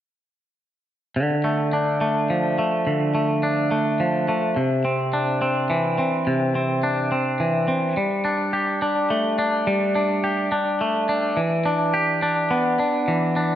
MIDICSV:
0, 0, Header, 1, 2, 480
1, 0, Start_track
1, 0, Tempo, 566572
1, 987, Time_signature, 3, 2, 24, 8
1, 11482, End_track
2, 0, Start_track
2, 0, Title_t, "Clean electric guitar"
2, 0, Program_c, 0, 27
2, 985, Note_on_c, 0, 50, 36
2, 1222, Note_on_c, 0, 57, 33
2, 1467, Note_on_c, 0, 62, 33
2, 1694, Note_off_c, 0, 57, 0
2, 1704, Note_on_c, 0, 57, 34
2, 1949, Note_on_c, 0, 53, 36
2, 2180, Note_off_c, 0, 57, 0
2, 2185, Note_off_c, 0, 50, 0
2, 2190, Note_on_c, 0, 57, 35
2, 2429, Note_on_c, 0, 50, 35
2, 2655, Note_off_c, 0, 57, 0
2, 2665, Note_on_c, 0, 57, 36
2, 2904, Note_off_c, 0, 62, 0
2, 2907, Note_on_c, 0, 62, 35
2, 3135, Note_off_c, 0, 57, 0
2, 3145, Note_on_c, 0, 57, 35
2, 3147, Note_off_c, 0, 53, 0
2, 3389, Note_on_c, 0, 53, 36
2, 3619, Note_off_c, 0, 57, 0
2, 3627, Note_off_c, 0, 50, 0
2, 3629, Note_on_c, 0, 57, 36
2, 3867, Note_off_c, 0, 53, 0
2, 3867, Note_on_c, 0, 48, 38
2, 3868, Note_off_c, 0, 57, 0
2, 3892, Note_off_c, 0, 62, 0
2, 4107, Note_on_c, 0, 60, 36
2, 4349, Note_on_c, 0, 62, 37
2, 4578, Note_off_c, 0, 60, 0
2, 4588, Note_on_c, 0, 60, 38
2, 4827, Note_on_c, 0, 52, 36
2, 5059, Note_off_c, 0, 60, 0
2, 5067, Note_off_c, 0, 48, 0
2, 5069, Note_on_c, 0, 60, 35
2, 5311, Note_on_c, 0, 48, 39
2, 5542, Note_off_c, 0, 60, 0
2, 5552, Note_on_c, 0, 60, 36
2, 5577, Note_off_c, 0, 62, 0
2, 5789, Note_on_c, 0, 62, 37
2, 6020, Note_off_c, 0, 60, 0
2, 6028, Note_off_c, 0, 52, 0
2, 6030, Note_on_c, 0, 60, 37
2, 6269, Note_on_c, 0, 52, 37
2, 6496, Note_off_c, 0, 60, 0
2, 6506, Note_on_c, 0, 60, 36
2, 6510, Note_off_c, 0, 48, 0
2, 6747, Note_off_c, 0, 60, 0
2, 6749, Note_off_c, 0, 52, 0
2, 6753, Note_on_c, 0, 55, 37
2, 6983, Note_off_c, 0, 62, 0
2, 6987, Note_on_c, 0, 62, 38
2, 7227, Note_on_c, 0, 67, 37
2, 7469, Note_off_c, 0, 62, 0
2, 7472, Note_on_c, 0, 62, 40
2, 7712, Note_on_c, 0, 57, 37
2, 7948, Note_off_c, 0, 62, 0
2, 7951, Note_on_c, 0, 62, 37
2, 8190, Note_off_c, 0, 55, 0
2, 8193, Note_on_c, 0, 55, 41
2, 8430, Note_off_c, 0, 62, 0
2, 8433, Note_on_c, 0, 62, 38
2, 8670, Note_off_c, 0, 67, 0
2, 8673, Note_on_c, 0, 67, 39
2, 8907, Note_off_c, 0, 62, 0
2, 8911, Note_on_c, 0, 62, 41
2, 8912, Note_off_c, 0, 57, 0
2, 9158, Note_on_c, 0, 57, 40
2, 9391, Note_off_c, 0, 62, 0
2, 9395, Note_on_c, 0, 62, 38
2, 9627, Note_off_c, 0, 55, 0
2, 9631, Note_on_c, 0, 52, 41
2, 9635, Note_off_c, 0, 57, 0
2, 9656, Note_off_c, 0, 62, 0
2, 9874, Note_on_c, 0, 62, 42
2, 10109, Note_off_c, 0, 67, 0
2, 10113, Note_on_c, 0, 67, 39
2, 10353, Note_off_c, 0, 62, 0
2, 10357, Note_on_c, 0, 62, 41
2, 10596, Note_on_c, 0, 59, 42
2, 10829, Note_off_c, 0, 62, 0
2, 10832, Note_off_c, 0, 52, 0
2, 10839, Note_on_c, 0, 62, 41
2, 11081, Note_on_c, 0, 52, 41
2, 11311, Note_off_c, 0, 62, 0
2, 11313, Note_off_c, 0, 67, 0
2, 11321, Note_on_c, 0, 62, 39
2, 11482, Note_off_c, 0, 52, 0
2, 11482, Note_off_c, 0, 59, 0
2, 11482, Note_off_c, 0, 62, 0
2, 11482, End_track
0, 0, End_of_file